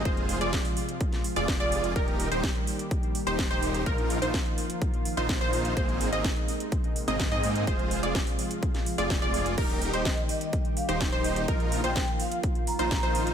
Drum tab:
CC |----------------|----------------|----------------|----------------|
HH |xxoxxooxxxoxxxox|xxoxxxoxxxoxxxox|xxoxxxoxxxoxxxox|xxoxxxoxxxoxxxox|
SD |----o----o--o---|----o-------o---|----o-------o---|----o-------o---|
BD |o---o---o---o---|o---o---o---o---|o---o---o---o---|o---o---o---o---|

CC |----------------|x---------------|----------------|
HH |xxoxxooxxxoxxxox|xxoxxxoxxxoxxxox|xxoxxxoxxxoxxxox|
SD |----o----o--o---|----o-------o---|----o-------o---|
BD |o---o---o---o---|o---o---o---o---|o---o---o---o---|